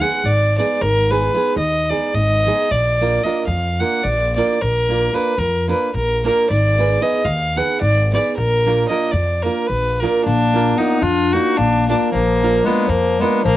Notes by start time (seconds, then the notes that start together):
0.00 G#3 B3 D#4 G#4 F#5
0.24 G#1 D5
0.58 G#3 B3 D#4 G#4 D5
0.81 G#1 A#4
1.10 G#3 B3 D#4 G#4 B4
1.34 G#3 B3 D#4 G#4
1.57 D#2 D#5
1.89 G#3 B3 D#4 G#4 D5
2.14 G#1 D#5
2.46 G#3 B3 D#4 G#4
2.71 A#1 D5
3.01 A#3 D4 F4 A#4
3.24 A#3 D4 F4 A#4 D#5
3.47 F2 F5
3.80 A#3 D4 F4 A#4 F#5
4.04 A#1 D5
4.36 A#3 D4 F4 A#4 D5
4.61 A#1 A#4
4.89 A#3 D4 F4 A#4
5.13 A#3 D4 F4 A#4 B4
5.38 F2 A#4
5.67 A#3 D4 F4 A#4 B4
5.94 A#1 A#4
6.24 A#3 D4 F4 A#4
6.50 G#1 D5
6.78 B3 D#4 G#4 B4
7.01 B3 D#4 G#4 B4 D#5
7.25 D#2 F5
7.56 B3 D#4 G#4 B4 F#5
7.81 G#1 D5
8.13 B3 D#4 G#4 B4 D5
8.37 A#1 A#4
8.66 A#3 D4 F4 A#4
8.88 A#3 D4 F4 A#4 D#5
9.11 F2 D5
9.42 A#3 D4 F4 A#4
9.67 A#1 B4
10.00 A#3 D4 F4 A#4
10.25 A#1 A#3 D4
10.53 A#3 D4 F4 A#4
10.77 A#3 B3 D4 D#4 F4 A#4
11.02 F2 D4 F4
11.33 A#3 D4 D#4 F4 F#4 A#4
11.57 A#1 A#3 D4
11.89 A#3 D4 F4 A#4
12.12 A#1 F3 A#3
12.42 A#3 D4 F4 A#4
12.64 G#3 A#3 B3 D4 F4 A#4
12.88 F2 F3 A#3
13.20 G#3 A#3 B3 D4 F4 A#4
13.44 A#1 F3 A#3